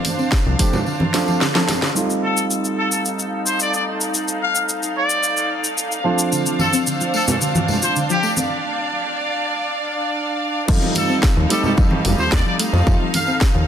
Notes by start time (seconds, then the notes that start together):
Already playing: D4 C5 F5
0.05 A3, open hi-hat, tambourine, high conga
0.18 C4, tambourine, muted conga
0.32 D3, kick, snare, tambourine
0.46 C2 F3
0.59 F3 A3 C4 D4 G4, kick, open hi-hat, tambourine
0.73 C4, tambourine, low conga
0.86 D3, tambourine
1.00 F3, high conga
1.14 F3 A3 C4 D4 F4, snare, open hi-hat, tambourine
1.28 F3, tambourine, muted conga
1.41 D3, snare, tambourine
1.55 F3 A3 C4 D4 A4, snare
1.69 A3, snare, open hi-hat, tambourine, muted conga
1.82 D3, snare, tambourine
1.95 G3 A3 C4 D#4 F4 A4 F5, cabasa
2.10 cabasa
2.23 A4
2.37 cabasa
2.51 cabasa
2.65 cabasa
2.78 A4
2.92 A4, cabasa
3.05 cabasa
3.19 cabasa
3.46 C5, cabasa
3.60 D5, cabasa
3.74 D5, cabasa
4.01 cabasa
4.14 cabasa
4.28 cabasa
4.41 F5
4.55 cabasa
4.69 cabasa
4.83 cabasa
4.96 D5
5.10 cabasa
5.23 cabasa
5.37 cabasa
5.64 cabasa
5.78 cabasa
5.92 cabasa
6.04 F3 A3 C4 D4 F4 C5
6.19 cabasa
6.32 D3, tambourine, cabasa
6.46 F3, cabasa
6.59 A3 A4, tambourine, high conga
6.72 C4, tambourine, cabasa
6.87 D3, tambourine, cabasa
7.00 F3, cabasa
7.14 A3 A4, tambourine
7.28 C4 A4, tambourine, low conga, cabasa
7.41 D3, tambourine, cabasa
7.55 F3, high conga, cabasa
7.68 A3, tambourine, low conga
7.82 F4 C5, tambourine, cabasa
7.96 D3, tambourine, cabasa
8.10 F3 G4, cabasa
8.23 A3 D5, tambourine
8.37 C4, tambourine, muted conga, cabasa
10.68 F2 D#3 G3 A3 C4 D#4 F4, kick, crash, tambourine
10.82 F3, muted conga
10.95 A3 A4, open hi-hat, tambourine, high conga
11.09 C4, tambourine
11.23 D#3, kick, snare, tambourine
11.37 D#2 F3
11.49 G3 A3 C4 D#4 G4 A4, open hi-hat, tambourine
11.63 C4 A4, tambourine, low conga
11.77 F2 D#3, kick, tambourine
11.91 F3, high conga
12.05 F1 A3, open hi-hat, tambourine, muted conga, low conga
12.18 D#2 F4 C5, tambourine
12.32 D#2 D#3 D5, kick, snare, tambourine
12.46 F3 D5
12.59 A3, open hi-hat, tambourine
12.73 F2 C4, tambourine, muted conga
12.86 F2 D#3 G3 A3 C4 D#4 F4, kick, tambourine
13.00 F3
13.14 A3 F5, open hi-hat, tambourine, high conga
13.27 C4, tambourine, muted conga
13.41 D#3, kick, snare, tambourine
13.55 D#2 F3